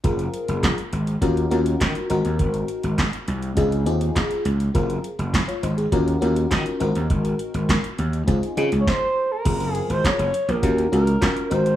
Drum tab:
CC |----------------|----------------|----------------|----------------|
HH |xxxxxxxxxxxxxxxx|xxxxxxxxxxxxxxxx|xxxxxxxxxxxxxxxx|xxxxxxxxxxxx----|
CP |----x-------x---|----x-------x---|----x-------x---|----x-----------|
SD |----o-------o---|----o-------o---|----o-------o---|----o-------o---|
BD |o---o---o---o---|o---o---o---o---|o---o---o---o---|o---o---o---o---|

CC |x---------------|
HH |xxxxxxxxxxxxxxxx|
CP |----x-------x---|
SD |----o-------o---|
BD |o---o---o---o---|